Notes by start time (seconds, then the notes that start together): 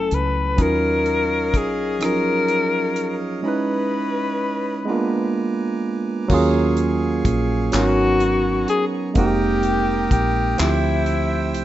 Already playing: F#3 A3 C#4 E4 A4 G#5
0.11 C#2 B4, closed hi-hat
0.56 D#2 F#3 C#4 D#4 F4 C#5 D#5 F5 D#6, kick, closed hi-hat
0.62 A#4
1.06 closed hi-hat
1.54 A#1 G#4, kick, closed hi-hat
1.99 F3 C#4 D#4, cross-stick, closed hi-hat
2.04 F#3 F4 G#4 A#4
2.48 closed hi-hat
2.96 closed hi-hat
3.43 G#3 C#4 D#4 E4 B4 D#5 B5
3.48 B4
4.85 G#3 B3 D4 B4 G#5 A#5 D6
4.89 A#3 F4
6.28 D#2 F#3 A#3 C#4 G#4 F5 G#5 C#6, kick, crash
6.32 F4 G#4
6.77 closed hi-hat
7.25 A#1, kick, closed hi-hat
7.72 G#1 F#3 B3 C#4 D#4 F#4 A#5, clap, closed hi-hat
7.77 A#4
8.20 closed hi-hat
8.68 G#4, closed hi-hat
9.14 F1 G#3 A#3 C4 D#4 G4 A#4 G5 A#5 D#6, kick, closed hi-hat
9.19 G4
9.63 closed hi-hat
10.11 A#1 G4, kick, closed hi-hat
10.58 D2 F3 A3 C4 E4 C5 E5 E6, clap, closed hi-hat
10.63 G4
11.06 closed hi-hat
11.54 C2, closed hi-hat